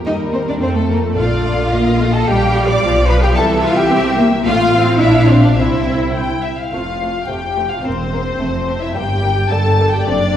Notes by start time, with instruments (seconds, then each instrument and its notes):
0.05 double bass section D#2, viola section G3, cello section D#4, violin section A#4 D#5
0.33 cello section C4, violin section C5
0.48 cello section D4, violin section D5
0.61 double bass section F2, viola section A3, cello section C4, violin section A4 C5
0.75 cello section A3, violin section A4
0.90 cello section A#3, violin section A#4
1.18 double bass section A#1, cello section F4, violin section D5 F5
1.73 viola section A#3, violin section D#5
2.01 viola section A3
2.14 cello section A4, violin section A5
2.27 double bass section A#1, viola section G3, cello section G4, violin section F5 G5
2.68 cello section D5, violin section D6
2.82 double bass section B1, viola section F3, violin section F5
3.09 cello section B4, violin section B5
3.23 cello section G4, violin section G5
3.35 double bass section C2, viola section E3, cello section A4, violin section E5 A5
3.63 cello section F4, violin section F5
3.77 cello section G4, violin section G5
3.91 viola section C4
4.18 viola section A#3
4.46 double bass section A1, viola section A3, cello section F4, violin section F5
4.73 viola section C4
5.01 double bass section A#1, viola section D4, cello section E4, violin section E5 F5
5.29 cello section C4, violin section C5
5.44 cello section D4, violin section D5
5.57 double bass section C2, cello section C4, viola section E4, violin section C5 E5
6.14 violin section G5
6.43 violin section E5
6.59 violin section F5
6.72 double bass section F1, cello section F2, violin section A3 C4 F5, viola section F4
7.01 violin section A3 C4
7.28 double bass section F1, cello section F2, violin section A3 C4 G5, viola section G4
7.57 violin section A3 C4
7.71 viola section F4, violin section F5
7.84 double bass section E1, cello section E2, violin section A#3 C4 C5, viola section C4
8.12 violin section A#3 C4
8.40 double bass section F1, cello section F2, violin section A3 C4
8.67 violin section A3 C4
8.82 viola section E4, violin section E5
8.94 double bass section G1, cello section G2, violin section G3 A#3 G5, viola section G4
9.21 violin section G3 A#3
9.50 double bass section G1, cello section G2, violin section G3 A#3 A5, viola section A4
9.79 violin section G3 A#3
9.93 viola section G4, violin section G5
10.06 double bass section F#1, cello section F#2, violin section A3 C4 D5, viola section D4